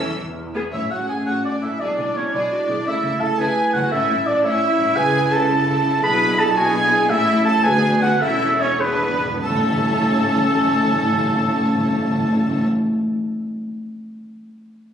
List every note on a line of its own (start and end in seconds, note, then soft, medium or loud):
0.00 0.13 E2 medium
0.00 0.16 E3 medium
0.00 0.16 E5 medium
0.00 0.17 E6 medium
0.17 0.64 E2 medium
0.55 0.64 B3 medium
0.55 0.64 G#4 medium
0.72 0.81 A1 soft
0.72 0.81 A2 medium
0.72 1.76 A3 soft
0.72 1.76 C#4 soft
0.72 0.90 E4 medium
0.72 0.90 C#5 medium
0.72 0.90 E5 soft
0.72 0.90 E5 medium
0.72 0.93 E5 medium
0.91 0.98 A1 soft
0.91 0.98 A2 soft
0.91 1.09 F#4 soft
0.91 0.99 C#5 soft
0.91 1.08 F#5 soft
0.91 1.09 F#5 medium
0.91 1.08 F#5 medium
1.09 1.16 A1 soft
1.09 1.16 A2 soft
1.09 1.27 G#4 medium
1.09 1.16 A4 soft
1.09 1.17 G#5 medium
1.09 1.27 G#5 soft
1.26 1.35 A1 medium
1.26 1.34 A2 medium
1.26 1.45 F#4 soft
1.26 1.43 C#5 medium
1.26 1.44 F#5 soft
1.26 1.44 F#5 medium
1.26 1.45 F#5 medium
1.44 1.63 D4 soft
1.44 1.52 D5 soft
1.44 1.62 D5 soft
1.44 1.53 D5 medium
1.62 1.70 A1 soft
1.62 1.70 A2 soft
1.62 1.81 E4 soft
1.62 1.70 A4 soft
1.62 1.81 E5 medium
1.62 1.80 E5 soft
1.62 1.81 E5 soft
1.80 1.88 B1 medium
1.80 1.88 B2 medium
1.80 2.86 G#3 soft
1.80 2.33 D4 medium
1.80 2.17 D4 medium
1.80 3.90 E4 soft
1.80 1.98 G#4 medium
1.80 2.18 D5 medium
1.80 2.16 D5 medium
1.80 2.17 D5 soft
1.98 2.06 B1 soft
1.98 2.05 B2 soft
1.98 2.06 G#4 soft
2.15 2.23 B1 soft
2.15 2.23 B2 soft
2.15 2.34 C#4 medium
2.15 2.24 E4 soft
2.15 2.33 C#5 medium
2.15 2.34 C#5 medium
2.15 2.33 C#5 medium
2.33 2.41 B1 medium
2.33 2.40 B2 medium
2.33 2.87 D4 medium
2.33 2.54 E4 medium
2.33 2.51 G#4 medium
2.33 2.86 D5 medium
2.33 2.89 D5 medium
2.33 2.87 D5 medium
2.52 2.69 F#4 medium
2.69 2.76 B1 soft
2.69 2.76 B2 soft
2.69 2.76 E4 soft
2.69 2.77 G#4 medium
2.85 2.93 C#2 medium
2.85 2.93 C#3 medium
2.85 3.90 A3 medium
2.85 3.21 E4 medium
2.85 3.02 E4 medium
2.85 3.38 A4 medium
2.85 3.21 E5 medium
2.85 3.22 E5 medium
3.03 3.11 C#2 soft
3.03 3.11 C#3 soft
3.03 3.11 E4 soft
3.20 3.28 C#2 soft
3.20 3.28 C#3 soft
3.20 3.28 C#4 medium
3.20 3.40 A4 medium
3.20 3.40 A5 medium
3.20 3.39 A5 medium
3.38 3.45 C#2 medium
3.38 3.46 C#3 medium
3.38 3.56 E4 medium
3.38 3.75 G#4 medium
3.38 3.93 B4 medium
3.38 3.75 G#5 medium
3.38 3.74 G#5 medium
3.38 3.75 G#5 medium
3.73 3.81 C#2 medium
3.73 3.82 C#3 medium
3.73 3.82 C#4 medium
3.73 3.92 F#4 medium
3.73 3.91 F#5 medium
3.73 3.92 F#5 medium
3.90 3.98 A1 medium
3.90 3.99 A2 medium
3.90 4.41 A2 medium
3.90 4.96 C#4 medium
3.90 4.09 C#4 medium
3.90 4.94 E4 medium
3.90 4.27 E4 medium
3.90 4.43 A4 medium
3.90 4.28 E5 medium
3.90 4.27 E5 medium
4.09 4.16 A1 medium
4.09 4.17 A2 soft
4.09 4.18 C#4 medium
4.26 4.34 A1 medium
4.26 4.34 A2 medium
4.26 4.35 A3 medium
4.26 4.44 D4 medium
4.26 4.43 D5 medium
4.26 4.45 D5 medium
4.26 4.46 D5 medium
4.44 4.51 A1 medium
4.44 4.51 A2 medium
4.44 4.61 C#4 medium
4.44 4.97 E4 medium
4.44 4.95 C#5 medium
4.44 4.98 E5 medium
4.44 4.96 E5 medium
4.79 4.86 A1 medium
4.79 4.87 A2 medium
4.79 4.87 A3 medium
4.96 5.99 C#2 medium
4.96 6.00 C#3 medium
4.96 6.00 C#4 medium
4.96 6.00 E4 medium
4.96 7.06 E4 medium
4.96 5.33 G#4 loud
4.96 5.49 B4 medium
4.96 5.33 G#5 loud
4.96 5.32 G#5 loud
4.96 5.32 G#5 medium
5.32 6.04 A4 medium
5.32 6.03 A5 medium
5.32 6.04 A5 medium
5.32 6.03 A5 medium
5.50 6.04 A4 medium
6.03 7.08 B1 medium
6.03 7.08 B2 medium
6.03 6.56 D4 medium
6.03 6.56 E4 medium
6.03 6.56 G#4 medium
6.03 6.39 B4 loud
6.03 6.41 B5 loud
6.03 6.38 B5 medium
6.03 6.39 B5 medium
6.39 6.46 A4 medium
6.39 6.58 A5 loud
6.39 6.47 A5 medium
6.39 6.57 A5 medium
6.56 7.10 D4 medium
6.56 7.10 E4 medium
6.56 6.74 F#4 loud
6.56 7.09 G#4 loud
6.56 7.10 G#5 loud
6.56 7.11 G#5 loud
6.56 7.09 G#5 loud
6.74 6.94 E4 medium
6.93 7.09 G#4 loud
7.09 7.64 A1 medium
7.09 7.64 A2 loud
7.09 7.60 C#4 medium
7.09 7.64 C#4 medium
7.09 7.46 E4 loud
7.09 7.64 E4 medium
7.09 7.44 A4 medium
7.09 7.44 E5 loud
7.09 7.46 E5 medium
7.09 7.45 E5 loud
7.45 7.65 A4 loud
7.45 7.63 A5 loud
7.45 7.64 A5 medium
7.45 7.64 A5 loud
7.63 8.20 D2 medium
7.63 8.21 D2 medium
7.63 8.21 B3 medium
7.63 8.17 D4 medium
7.63 8.21 F#4 medium
7.63 8.02 G#4 loud
7.63 8.16 B4 loud
7.63 8.00 G#5 loud
7.63 8.01 G#5 loud
8.01 8.09 F#4 medium
8.01 8.20 F#5 medium
8.01 8.23 F#5 loud
8.01 8.21 F#5 loud
8.20 9.19 E1 medium
8.20 9.19 E2 medium
8.20 8.64 C#4 medium
8.20 8.76 C#4 medium
8.20 8.59 E4 loud
8.20 8.78 A4 loud
8.20 8.64 A4 medium
8.20 8.59 E5 loud
8.20 8.60 E5 loud
8.20 8.62 E5 loud
8.60 8.80 C#4 medium
8.60 8.80 C#5 medium
8.60 8.82 C#5 loud
8.79 8.87 E2 soft
8.79 9.41 B3 medium
8.79 9.21 D4 medium
8.79 9.19 D4 medium
8.79 9.10 G#4 medium
8.79 9.22 G#4 medium
8.79 9.42 B4 medium
8.79 9.41 B4 medium
8.79 9.27 B4 medium
8.88 8.96 E2 medium
8.97 9.05 E2 medium
9.06 9.14 E2 medium
9.15 9.23 E2 medium
9.24 9.31 E2 loud
9.32 9.40 E2 loud
9.42 12.64 A1 medium
9.42 9.49 A2 medium
9.42 12.64 A2 medium
9.42 12.64 C#4 medium
9.42 12.63 A4 medium
9.42 12.64 A4 medium
9.42 12.65 A4 loud
9.42 12.64 C#5 medium
9.42 12.64 A5 medium
9.49 9.57 A2 medium
9.57 9.65 A2 loud
9.65 9.72 A2 medium
9.72 9.80 A2 loud
9.80 9.87 A2 medium
9.88 9.95 A2 loud
9.96 10.03 A2 medium
10.04 10.11 A2 loud
10.11 10.18 A2 medium
10.19 10.27 A2 medium
10.27 10.35 A2 medium
10.35 10.43 A2 loud
10.43 10.51 A2 medium
10.51 10.58 A2 loud
10.58 10.66 A2 loud
10.66 10.73 A2 loud
10.74 10.82 A2 medium
10.82 10.90 A2 loud
10.91 10.98 A2 medium
10.98 11.05 A2 medium
11.05 11.12 A2 medium
11.12 11.19 A2 loud
11.19 11.27 A2 medium
11.27 11.35 A2 medium
11.35 11.42 A2 medium
11.42 11.50 A2 medium
11.50 11.58 A2 medium
11.58 11.65 A2 loud
11.65 11.73 A2 medium
11.73 11.80 A2 medium
11.80 11.88 A2 medium
11.88 11.95 A2 medium
11.95 12.02 A2 medium
12.02 12.10 A2 loud
12.10 12.18 A2 medium
12.18 12.25 A2 loud
12.25 12.33 A2 medium
12.33 12.40 A2 loud
12.40 12.48 A2 medium
12.48 12.56 A2 loud
12.56 12.64 A2 medium
12.65 12.72 A2 medium